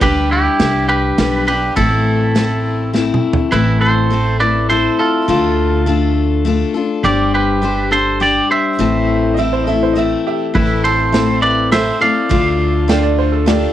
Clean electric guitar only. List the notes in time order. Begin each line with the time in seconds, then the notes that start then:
0.02 G4 B4
0.31 E4 G4
0.88 G4 B4
1.48 G4 B4
1.76 E4 A4
3.52 E4 B4
3.81 A4 C5
4.40 B4 D5
4.70 A4 C5
4.99 F4 A4
7.04 G4 D5
7.34 G4 B4
7.92 A4 C5
8.21 G4 D5
8.51 C5 E5
10.55 E4 B4
10.84 A4 C5
11.42 B4 D5
11.72 C5 E5
12.01 D5 F5